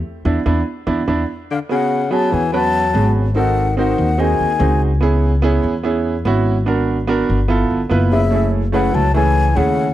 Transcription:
0.25 upright bass E2, grand piano B3 D4 E4
0.46 upright bass E2, grand piano B3 D4 E4
0.87 upright bass E2, grand piano B3 D4 E4
1.08 upright bass E2, grand piano B3 D4 E4
1.51 tenor saxophone D3, flute F5
1.69 tenor saxophone C#3, grand piano B3 C#4 F#4 G#4, flute F#5
2.11 tenor saxophone F#3, grand piano B3 C#4 F#4 G#4, flute A5
2.32 upright bass E2, tenor saxophone E3, flute G#5
2.52 tenor saxophone F#3, grand piano B3 C#4 F#4 B4, flute A5
2.94 upright bass G#1, grand piano B3 C#4 F#4 G#4
3.35 tenor saxophone D#3, grand piano C4 D#4 F#4 A4, flute F#5
3.77 tenor saxophone D#3, grand piano C4 D#4 F#4 C5, flute F#5
3.98 upright bass D#2
4.18 tenor saxophone D#3, grand piano C4 D#4 F#4 G#4, flute G#5
4.40 upright bass D#2
4.59 upright bass C#2, grand piano C4 D#4 F#4 G#4
5.01 grand piano B3 C#4 E4 G#4
5.42 grand piano B3 C#4 E4 G#4
5.63 upright bass E2
5.83 grand piano B3 C#4 E4 G#4
6.25 upright bass G#1, grand piano B3 C#4 E4 F#4
6.66 grand piano B3 D4 F#4 A#4
7.07 grand piano B3 D4 F#4 A#4
7.29 upright bass G1
7.48 grand piano B3 E4 F4 A4
7.70 upright bass G1
7.89 upright bass F#1, grand piano B3 E4 F4 B4
8.12 tenor saxophone C#3, flute E5
8.31 grand piano A3 C#4 E4 G#4
8.72 tenor saxophone C#3, grand piano A3 C#4 E4 B4, flute F#5
8.93 upright bass C#2, tenor saxophone F#3, flute A5
9.13 tenor saxophone E3, grand piano A3 C#4 E4 G#4, flute G#5
9.55 upright bass D#2, tenor saxophone C#3, grand piano A3 C#4 E4 G#4, flute F#5

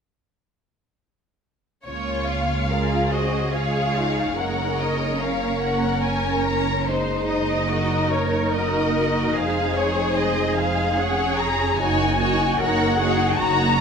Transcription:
1.85 double bass section C#2, viola section A#3 C#4, violin section F4 C#5
2.28 violin section F5
2.70 viola section G#3 C#4, cello section F4, violin section G#4 A#4
3.12 cello section F#4, violin section C5 D#5
3.53 viola section G#3 F4, cello section G#4, violin section G#4 C#5 F5
3.96 viola section D#4, cello section F4
4.37 double bass section F#1, viola section C#4, cello section D#4, violin section A#4 C#5 F#5
4.79 violin section D#5
5.20 viola section A#3, cello section C#4, violin section A#4 F5
5.63 violin section F#5
6.03 viola section C#4, cello section C#4, violin section C#5 G#5
6.47 violin section A#5
6.88 viola section G#3 D#4, violin section D#4 C5, cello section D#4
7.30 violin section D#5
7.70 viola section F#3 D#4, cello section F#4, violin section A#4
8.12 viola section A#3, cello section A#4, violin section C#5
8.54 violin section F#4 A#4 D#5
8.96 violin section F#4
9.36 double bass section F1, viola section G#3, cello section G#4, violin section G#4 C5 F5
9.76 violin section C#5
10.16 cello section G#4, violin section D#5
10.57 violin section F5
10.98 viola section C#4, violin section G#4 C#5 F#5
11.39 violin section A#5
11.79 double bass section F#1, viola section A#3 D#4, cello section D#4, violin section F#4 C#5 G#5
12.19 viola section A#3 D#4, cello section F#4, violin section F#4 C#5
12.58 double bass section F#1, viola section A#3 D#4, violin section F#4 C#5 F#5, cello section A#4
12.99 viola section A#3 D#4, violin section F#4 C#5, cello section G#4
13.39 double bass section F#1, viola section A#3 D#4, cello section F#4, violin section F#4 C#5 A#5

